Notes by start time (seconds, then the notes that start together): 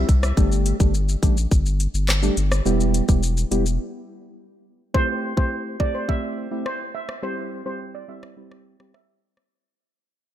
Already playing: E5
0.09 C2, kick, closed hi-hat, shaker
0.23 cross-stick, shaker
0.37 G1 G3 A3 D4 G4, kick, shaker
0.52 shaker
0.66 closed hi-hat, shaker
0.80 G1 G3 A3 D4 G4, kick, shaker
0.94 shaker
1.09 shaker
1.23 A1 G3 A3 D4 G4, kick, closed hi-hat, shaker
1.37 shaker
1.51 G1, kick, shaker
1.66 shaker
1.80 closed hi-hat, shaker
1.94 G1, shaker
2.09 cross-stick, clap, shaker
2.23 G3 A3 D4 G4, shaker
2.37 G1, closed hi-hat, shaker
2.52 cross-stick, shaker
2.65 E1 G3 B3 E4 G4, shaker
2.80 shaker
2.94 closed hi-hat, shaker
3.08 E1 G3 B3 E4 G4, kick, shaker
3.23 shaker
3.37 shaker
3.51 E1 G3 B3 E4 G4, closed hi-hat, shaker
3.66 shaker
4.94 A3 C4 E4 G4 C5, kick
5.37 A3 C4 E4 G4 C5, kick
5.80 A3 C4 E4 G4 D5, kick
5.95 C5
6.08 A3 C4 E4 G4 E5, kick
6.51 A3 C4 E4 G4
6.66 C5, cross-stick
6.95 E5
7.09 cross-stick
7.22 G3 C4 E4 G4 C5
7.66 G3 C4 E4 G4 C5
7.95 D5
8.08 G3 C4 E4 G4 E5
8.23 cross-stick
8.37 G3 C4 E4 G4
8.52 cross-stick
8.80 G3 C4 E4 G4, cross-stick
8.94 E5, cross-stick
9.37 cross-stick